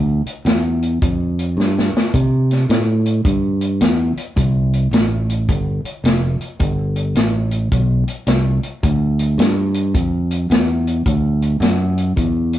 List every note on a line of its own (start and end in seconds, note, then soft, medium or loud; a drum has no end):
0.00 0.23 D2 medium
0.26 muted fingered electric bass stroke soft
0.26 closed hi-hat medium
0.45 1.00 E2 medium
0.45 snare loud
0.45 closed hi-hat medium
0.82 closed hi-hat medium
1.02 1.56 F2 medium
1.02 kick loud
1.02 closed hi-hat medium
1.39 closed hi-hat medium
1.57 1.91 G2 medium
1.57 snare medium
1.79 snare medium
1.94 muted fingered electric bass stroke soft
1.94 snare loud
2.14 2.68 C3 medium
2.14 kick loud
2.14 closed hi-hat medium
2.51 snare soft
2.51 closed hi-hat medium
2.69 3.24 A2 medium
2.69 snare loud
2.69 closed hi-hat medium
3.06 closed hi-hat medium
3.25 3.79 G2 medium
3.25 kick loud
3.25 closed hi-hat medium
3.61 closed hi-hat medium
3.81 4.15 E2 medium
3.81 snare loud
3.81 closed hi-hat medium
4.16 muted fingered electric bass stroke soft
4.16 closed hi-hat medium
4.36 4.91 C2 medium
4.36 kick loud
4.36 closed hi-hat medium
4.73 closed hi-hat medium
4.91 5.46 A1 medium
4.91 snare loud
4.91 closed hi-hat medium
5.29 closed hi-hat medium
5.49 5.82 G1 medium
5.49 kick loud
5.49 closed hi-hat medium
5.84 muted fingered electric bass stroke soft
5.84 closed hi-hat medium
6.04 6.38 F1 medium
6.04 snare loud
6.04 closed hi-hat medium
6.40 muted fingered electric bass stroke soft
6.40 closed hi-hat medium
6.59 7.14 G1 medium
6.59 kick loud
6.59 closed hi-hat medium
6.96 closed hi-hat medium
7.15 7.70 A1 medium
7.15 snare loud
7.15 closed hi-hat medium
7.51 closed hi-hat medium
7.72 8.05 B1 medium
7.72 kick loud
7.72 closed hi-hat medium
8.07 muted fingered electric bass stroke soft
8.07 closed hi-hat medium
8.27 8.61 C2 medium
8.27 snare loud
8.27 closed hi-hat medium
8.63 closed hi-hat medium
8.83 9.37 D2 medium
8.83 kick loud
8.83 closed hi-hat medium
9.19 closed hi-hat medium
9.38 9.93 G2 medium
9.38 snare loud
9.38 closed hi-hat medium
9.74 closed hi-hat medium
9.94 10.49 F2 medium
9.94 kick loud
9.94 closed hi-hat medium
10.31 closed hi-hat medium
10.50 11.04 E2 medium
10.50 snare loud
10.50 closed hi-hat medium
10.87 closed hi-hat medium
11.06 11.59 D2 medium
11.06 kick loud
11.06 closed hi-hat medium
11.42 closed hi-hat medium
11.60 12.15 F#2 loud
11.60 snare loud
11.60 closed hi-hat medium
11.98 closed hi-hat medium
12.16 12.59 E2 medium
12.16 kick loud
12.16 closed hi-hat medium
12.53 closed hi-hat medium